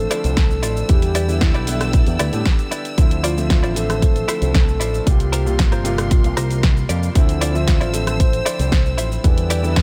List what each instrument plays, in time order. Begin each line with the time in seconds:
Already playing: grand piano D3 F3 C4 E5, soft synth lead A4, violin section C5 E6
0.11 clean electric guitar E4 F4 C5 D5, cross-stick, open hi-hat, shaker
0.24 picked electric bass C2, closed hi-hat, shaker
0.37 soft synth lead A4, kick, snare, closed hi-hat, shaker
0.51 shaker
0.63 picked electric bass A1, clean electric guitar E4 F4 C5 D5, open hi-hat, shaker
0.77 shaker
0.88 picked electric bass E2, grand piano D3 G3 B3 E4, soft synth lead G4, violin section D5 G5, kick, closed hi-hat, shaker
1.02 closed hi-hat, shaker
1.15 clean electric guitar E4 G4 B4 D5, open hi-hat, shaker
1.28 grand piano D3 G3 B3 E4, shaker
1.41 soft synth lead E4, muted clean electric guitar stroke, kick, snare, closed hi-hat, shaker
1.54 picked electric bass B1, clean electric guitar E4 G4 B4 D5, closed hi-hat, shaker
1.66 grand piano D3 G3 B3 E4, open hi-hat, shaker
1.81 cross-stick, closed hi-hat, shaker
1.93 muted clean electric guitar stroke, kick, closed hi-hat, shaker
2.07 picked electric bass E2, closed hi-hat, shaker
2.19 picked electric bass D2, clean electric guitar E4 G4 B4 D5, cross-stick, open hi-hat, shaker
2.32 picked electric bass A2, grand piano D3 G3 B3 G4, closed hi-hat, shaker
2.46 kick, snare, closed hi-hat, shaker
2.59 closed hi-hat, shaker
2.71 clean electric guitar E4 G4 B4 D5, open hi-hat, shaker
2.85 closed hi-hat, shaker
2.97 picked electric bass D2, grand piano D3 F3 C4 E4, violin section C5, kick, closed hi-hat, shaker
3.11 closed hi-hat, shaker
3.24 clean electric guitar E4 F4 C5 D5, soft synth lead F4, open hi-hat, shaker
3.37 grand piano D3 F3 C4 E5, shaker
3.50 kick, snare, closed hi-hat, shaker
3.63 picked electric bass A1, clean electric guitar E4 F4 C5 D5, closed hi-hat, shaker
3.75 grand piano D3 F3 C4 E5, soft synth lead A4, open hi-hat, shaker
3.90 cross-stick, closed hi-hat, shaker
4.02 muted clean electric guitar stroke, kick, closed hi-hat, shaker
4.16 closed hi-hat, shaker
4.28 clean electric guitar E4 F4 C5 E5, cross-stick, open hi-hat, shaker
4.42 picked electric bass C2, closed hi-hat, shaker
4.54 soft synth lead A4, kick, snare, closed hi-hat, shaker
4.68 shaker
4.80 picked electric bass A1, clean electric guitar E4 F4 C5 D5, open hi-hat, shaker
4.94 shaker
5.06 picked electric bass C2, grand piano C3 G3 A#3 F4, soft synth lead G4, violin section A#4 C6, kick, closed hi-hat, shaker
5.20 closed hi-hat, shaker
5.32 clean electric guitar F4 G4 A#4 C5, open hi-hat, shaker
5.45 grand piano C3 G3 A#3 F4, shaker
5.59 soft synth lead F4, kick, snare, closed hi-hat, shaker
5.72 picked electric bass G1, clean electric guitar F4 G4 A#4 C5, closed hi-hat, shaker
5.84 grand piano C3 G3 A#3 F4, open hi-hat, shaker
5.98 cross-stick, closed hi-hat, shaker
6.11 muted clean electric guitar stroke, kick, closed hi-hat, shaker
6.24 picked electric bass C2, closed hi-hat, shaker
6.37 picked electric bass C2, clean electric guitar F4 G4 A#4 C5, cross-stick, open hi-hat, shaker
6.51 closed hi-hat, shaker
6.63 kick, snare, closed hi-hat, shaker
6.77 shaker
6.89 picked electric bass F2, clean electric guitar F4 G4 A#4 D5, open hi-hat, shaker
7.03 shaker
7.15 picked electric bass D2, grand piano D3 F3 C4 E4, violin section C5 E6, kick, closed hi-hat, shaker
7.29 closed hi-hat, shaker
7.41 clean electric guitar E4 F4 C5 D5, soft synth lead F4, open hi-hat, shaker
7.54 grand piano D3 F3 C4 E5, shaker
7.68 kick, snare, closed hi-hat, shaker
7.81 picked electric bass A1, clean electric guitar E4 F4 C5 D5, closed hi-hat, shaker
7.92 grand piano D3 F3 C4 E5, soft synth lead A4, open hi-hat, shaker
8.07 cross-stick, closed hi-hat, shaker
8.20 soft synth lead C5, muted clean electric guitar stroke, kick, closed hi-hat, shaker
8.33 closed hi-hat, shaker
8.46 clean electric guitar E4 F4 C5 D5, cross-stick, open hi-hat, shaker
8.59 picked electric bass C2, closed hi-hat, shaker
8.72 kick, snare, closed hi-hat, shaker
8.86 shaker
8.98 picked electric bass A1, clean electric guitar E4 F4 C5 E5, soft synth lead C5, open hi-hat, shaker
9.12 shaker
9.23 picked electric bass E2, grand piano D3 G3 B3 E4, soft synth lead B4, violin section D5 G5 E6, kick, closed hi-hat, shaker
9.38 closed hi-hat, shaker
9.50 clean electric guitar E4 G4 B4 D5, open hi-hat, shaker
9.63 grand piano D3 G3 B3 E4, shaker
9.76 kick, snare, closed hi-hat, shaker